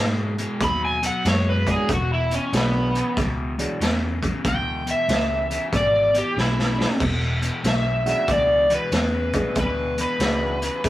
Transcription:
Already playing: G#2 B2 G#3
0.38 B2 G#3, closed hi-hat
0.60 D#2 B2 F#3 B5, kick, closed hi-hat
0.85 G#5
1.02 B2 F#3 F#5, closed hi-hat
1.24 F#2 B2 G#3 C#5, snare, closed hi-hat
1.49 B4
1.66 B2 F#3 G#3 B3 D4, kick, closed hi-hat
1.71 G#4
1.88 E1 E2 B2, kick, closed hi-hat
1.93 F#4
2.14 E4
2.30 E2 B2, closed hi-hat
2.35 C#4
2.52 B1 E2 C#3 F#3 G#3 B3 D4, snare, closed hi-hat
2.94 E2 C#3, closed hi-hat
3.16 C#2 E2 B2, kick, snare, closed hi-hat
3.58 E2 B2 F#3 G#3 B3 D4, closed hi-hat
3.80 E2 C#3, snare, closed hi-hat
4.22 E2 C#3, kick, closed hi-hat
4.44 D2 E2 B2, kick, closed hi-hat
4.48 G5
4.86 E2 B2, closed hi-hat
4.91 E5
5.08 C#2 E2 C#3, snare, closed hi-hat
5.50 E2 C#3, closed hi-hat
5.72 G#1 E2 B2 D5, kick, closed hi-hat
6.14 E2 B2, closed hi-hat
6.18 G4
6.36 B1 E2 C#3 E4, snare
6.59 snare
6.78 E2 C#3 F#3 G#3 B3 D4, snare
7.00 E1 E2 B2, kick, crash
7.42 E2 B2, closed hi-hat
7.64 B1 E2 C#3, snare, closed hi-hat
7.68 E5
8.05 E2 C#3 G#3 B3 D4 E4 F#4, closed hi-hat
8.10 E5
8.28 C#2 E2 B2 D5, kick, snare, closed hi-hat
8.70 E2 B2, closed hi-hat
8.75 B4
8.92 E2 C#3, snare, closed hi-hat
9.33 E2 C#3 G#3 B3 D4 E4 G#4, kick, closed hi-hat
9.55 D2 E2 B2, kick, closed hi-hat
9.60 B4
9.98 E2 B2, closed hi-hat
10.02 B4
10.20 C#2 E2 C#3 G#3 B3 D4 E4 F#4, snare, closed hi-hat
10.62 E2 C#3, closed hi-hat
10.84 G#1 E2 B2, kick, closed hi-hat

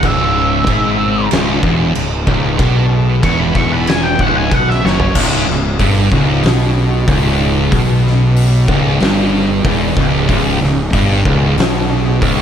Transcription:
Already playing: C#3 D#3 G#3
0.03 C#1 C#2 E5, kick, crash
0.67 G#1 G#2, kick, crash
1.31 C#1 C#2, snare, crash
1.62 E1 E2, kick
1.95 C#1 C#2, crash
2.27 C#1 C#2, kick
2.58 B1 B2, kick, crash
3.22 E1 E2 C#6, kick, crash
3.39 B5
3.55 E1 E2 C#6, kick
3.73 B5
3.87 G#5, snare, crash
4.03 G5
4.19 C#1 C#2 F#5, kick
4.37 G#5
4.51 B1 B2 F#5, kick, crash
4.69 E5, snare
4.83 F#1 F#2 C#5, snare
5.00 floor tom
5.15 C#1 C#2 C#3 D#4 G#4, kick, crash
5.48 C#1 C#2, snare
5.79 G1 G2, kick, open hi-hat
6.12 C#1 C#2, kick
6.43 B1 B2, snare, open hi-hat
7.08 C#1 C#2, kick, open hi-hat
7.72 B1 B2, kick, open hi-hat
8.07 snare
8.36 open hi-hat
8.68 C#1 C#2, kick
9.00 G1 G2, snare, open hi-hat
9.65 E1 E2, kick, open hi-hat
9.97 C#1 C#2, kick
10.29 C#1 C#2, kick, open hi-hat
10.61 C#1 C#2, snare
10.93 G1 G2, kick, open hi-hat
11.25 C#1 C#2, kick
11.57 B1 B2, snare, open hi-hat
12.21 C#1 C#2, kick, open hi-hat

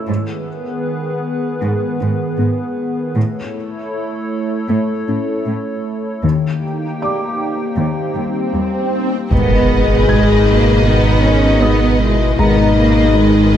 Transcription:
Already playing: E5 E6
0.08 G#2 D#3 G#3 B3 G#4 B4
1.62 G#2 G#3
2.01 G#2 B3
2.39 G#2 B3
3.15 A2 A3 E4 A4 C#5
4.70 A2 A3
5.08 A2 C#4
5.47 A2 C#4
6.24 D#2 D#3 A#3 D#4 G4 G5, swell
7.02 D5 D6
7.78 D#2 D#3
8.16 D#2 G3
8.55 D#2 G3
9.31 G#1 B2 D#3 G#3 B3 G#4 B4 D#5, impact
10.08 G#3 D#4 G#6
10.47 G#3 A#3
10.85 B3 D#4
11.24 B3 C#4
11.62 G#3 B3 D#5 D#6
12.01 G#3 B3 E4
12.39 G#1 B2 D#3 G#3 B3 D#4 G#4 B4 D#5 A#5
12.78 A#3
13.16 G#3 D#4

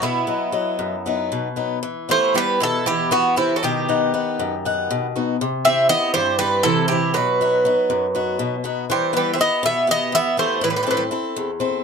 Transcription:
0.02 B2 B3 E4
0.27 F#3 B3 D#5
0.52 F#3 B3 D#5
0.79 F#2
1.06 F#3 B3 D#4
1.32 B2
1.56 F#3 B3 D#4
1.83 E3
2.09 A3 B3 E4 G4 C5
2.34 G3 B3 E4 G4 B4
2.60 B2 E3 A4
2.86 E3 B3 E4 G4
3.11 E3 B3 F#4
3.36 C3 B3 E4 G4
3.56 F#3 A4
3.63 B2 D#3 G4
3.89 B3 D#4 F#5
4.14 B3 D#4 F#5
4.39 F#2
4.65 B3 D#4 F#5
4.90 B2
5.16 B3 D#4 F#4
5.41 C3
5.65 C4 E4 G4 E5
5.89 B3 C4 E4 G4 D#5
6.14 G2 G3 C5
6.39 G3 C4 E4 G4 B4
6.63 C3 E3 A4
6.88 E3 C4 G4
6.92 E4 G4
7.14 B2 F#3 B4
7.41 B3 D#4 F#4
7.65 B3 D#4 F#4
7.90 F#2
8.15 B3 D#4 F#4
8.39 B2
8.64 B3 D#4 F#4
8.90 E3 G3 C5
9.13 B3 E4 G4 B4
9.17 G3
9.33 C4 E5
9.39 B3 E4 G4 D#5
9.63 B2 B3 E5
9.87 B3 E4 G4 D#5
10.12 E3 B3 E5
10.37 A3 B3 E4 G4 C5
10.61 A2 E3 B4
10.70 G3 B4
10.76 G3 B4
10.83 G3 C4 B4
10.87 G3 E4 A4 B4
10.97 G3 B4
11.11 C4 E4 A4
11.36 E2
11.60 C4 E4 A4

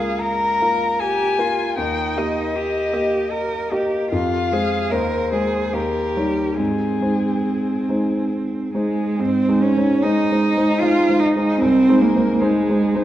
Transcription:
Already playing: C#2 A#3 F4 G#4 A#4 F5
0.19 A#4 A#5
0.61 A#3 F4 A#4
0.99 G4 G#5
1.38 A#3 F4 A#4
1.77 D#2 D#4 G5
2.17 A#3 G4 D#5
2.56 G4
2.93 A#3 G4 D#5
3.32 A#4
3.71 A#3 G4 D#5
4.11 F2 F4 F5
4.52 G#3 G#4 C5
4.91 D#2 A#4 C5
5.32 G#3 G#4 C5
5.73 D#2 G4 A#4
6.17 G3 D#4 C#5
6.58 G#2 C4 G#4
7.01 G#3 D#4 C5
7.89 G#3 D#4 C5
8.73 G#3 D#4 G#4 C5
9.20 G#2 C4 C5
9.48 G#3 D#4 C5
9.61 C#4 C#5
9.77 G#3 D#4 C5
10.02 G#3 D#4 C5 D#5
10.32 G#3 D#4 C5
10.57 G#3 D#4 C5
10.80 G#3 D#4 F4 C5 F5
11.09 G#3 D#4 C5
11.20 D#4 D#5
11.36 G#3 D#4 C5
11.60 C2 C4 C5
11.88 G#3 D#4 C5
12.01 A#3 A#4
12.16 G#3 D#4 C5
12.40 G#3 D#4 G#4 C5
12.69 G#3 D#4 C5
12.95 G#3 D#4 C5

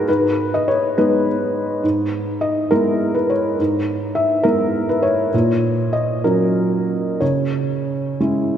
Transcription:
Already playing: A#4
0.08 G#2 B4
0.54 D#5
0.68 C#5
0.98 G#3 B3 D#4 B4
1.83 G#2
2.41 D#5
2.71 G#3 B3 E4 A#4
3.15 B4
3.30 C#5
3.59 G#2
4.15 E5
4.43 G#3 B3 E4 A#4
4.89 B4
5.03 C#5
5.34 A#2
5.93 D#5
6.24 F#3 C#4 F#4 A#4
7.21 C#3 C#5
8.20 G#3 C#4 E4

